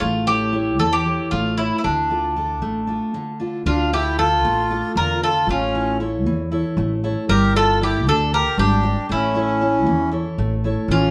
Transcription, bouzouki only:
0.00 F4
0.27 G4
0.79 A4
0.93 G4
1.31 F4
1.57 E4
1.78 E4
1.84 D4
3.66 F4
3.93 G4
4.19 A4
4.97 A#4
5.23 A4
5.50 F4
7.29 A#4
7.56 A4
7.83 G4
8.09 A4
8.34 A#4
8.59 G4
9.12 E4
10.91 F4

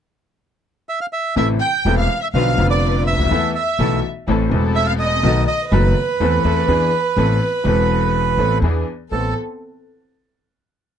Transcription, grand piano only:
1.36 A1 A2 C3 E3 A3 E4
1.85 E1 E2 C3 E3 A3 E4
2.35 B1 B2 D3 F3 B3 F4
2.57 F1 F2 D3 F3 B3 F4
3.13 C#2
3.19 D2
3.25 D#2
3.31 E2 E3 A3 B3 A4
3.79 B1 B2 E3 A3 B3 A4
4.28 A1 A2 E3 A3 C4 A4
4.50 E1 E2 E3 A3 C4
4.54 A4
5.23 B1 B2 D#3 A3 B3 F#4
5.72 F#1 F#2 D#3 A3 B3 F#4
6.20 E2 E3 A3 C4 A4
6.45 E2 E3 A3 C4 A4
6.68 E2 E3 B3 D4 G#4
7.17 A1 A2 E3 B3 C4 A4
7.64 E1 E2 E3 B3 C4
7.68 A4
8.38 A1 A2 E3 B3 C4 A4
8.64 E2 E3 B3 D4 G#4
9.12 A1 B3 C4 A4

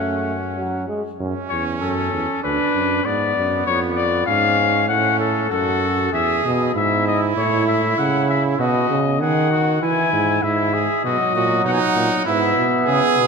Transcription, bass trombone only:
Already playing: F#2
1.20 F#2
1.51 E2
1.82 F#2
2.13 E2
2.44 D2
2.74 F#2
3.05 G#2
3.36 F#2
3.67 F2
4.27 G#2
4.89 A2
5.50 F#2
6.13 E2
6.45 B2
6.75 G#2
7.37 A2
7.98 C#3
8.59 B2
8.90 C#3
9.21 D#3
9.83 E3
10.13 G#2
10.43 G#2
11.04 B2
11.34 A#2
11.65 B2
11.95 A#2
12.27 G#2
12.57 B2
12.88 C#3
13.18 B2

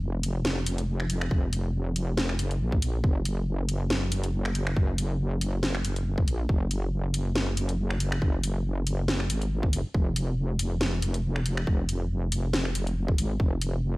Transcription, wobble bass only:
Already playing: F1
1.31 F1
2.39 F#1
2.61 A#1
3.04 F#1
4.77 F#1
6.28 A#1
6.49 F#1
8.22 F#1
9.30 G#1
9.73 F#1
9.95 F1
11.67 F1
13.18 G#1
13.40 F1

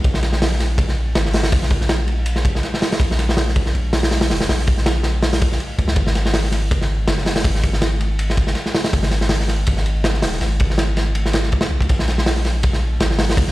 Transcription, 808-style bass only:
0.04 A#1
1.15 G#1
1.52 A#1
3.00 A#1
3.75 A#1
4.30 F1
4.49 A#1
5.79 C#2
5.96 G#1
7.08 F#1
7.44 G#1
8.93 G#1
9.68 G#1
10.23 D#1
10.41 G#1
11.71 B1
11.90 A#1
13.00 G#1
13.37 A#1

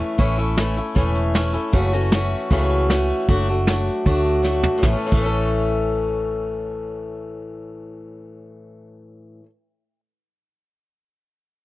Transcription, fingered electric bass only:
0.19 A1
0.96 E1
1.73 F#1
2.51 C#2
3.28 F#1
4.06 D2
4.83 A1
5.12 A1

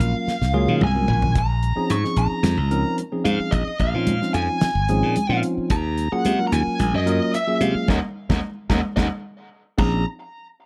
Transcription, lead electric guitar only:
Already playing: F5
0.84 G#5
1.39 A#5
1.91 C#6
2.19 A#5
3.25 F5
3.52 D#5
3.81 F5
4.34 G#5
5.71 A#5
6.13 F#5
6.47 A#5
6.52 G#5
6.96 D#5
7.35 E5
7.62 F5
7.90 D#5 F#5 A#5
8.31 D#5 F#5 A#5
8.70 D#5 F#5 A#5
8.96 D#5 F#5 A#5
9.79 A#5

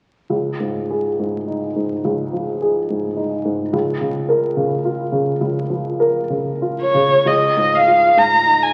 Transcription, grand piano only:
0.30 C#2
0.60 G#2
0.90 G#4
1.19 G#2
1.48 D#4
1.76 G#2
2.04 C#2
2.33 F3
2.62 G#4
2.90 G#2
3.17 D#4
3.45 G#2
3.73 C#2
4.01 C#3
4.29 A#4
4.56 C#3
4.85 F4
5.12 C#3
5.41 C#2
5.70 F3
6.00 A#4
6.30 C#3
6.62 F4
6.94 C#3
7.26 C#2
7.57 G#2
7.87 F4
8.17 G#2
8.46 D#4

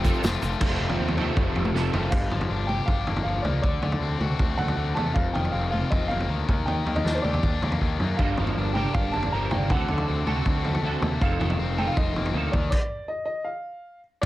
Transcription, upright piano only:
Already playing: G5
2.10 F5
2.67 G5
2.86 F5
3.23 F5
3.42 D5
3.62 D5
4.58 F#5
4.95 A5
5.14 F5
5.33 G5
5.52 F5
5.70 F5
5.90 D#5
6.08 F5
6.66 G5
6.96 D#5
7.15 C5
7.22 D5
8.16 F5
8.74 G5
8.94 F5
9.12 A5
9.32 A#5
9.51 G5
9.71 F#5
11.22 F5
11.78 G5
11.87 F5
11.97 D#5
12.52 D5
12.71 D5
13.08 D#5
13.25 D#5
13.44 F5
14.21 D5

